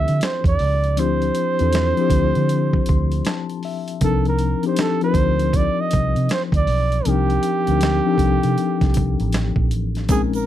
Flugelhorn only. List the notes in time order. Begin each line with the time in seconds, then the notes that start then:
Already playing: E5
0.24 C5
0.47 D5
1.00 C5
4.04 A4
4.28 A#4
4.67 C5
4.81 A4
5.04 C5
5.56 D5
5.81 D#5
6.33 C5
6.56 D5
7.08 G4
10.11 G#4
10.36 A#4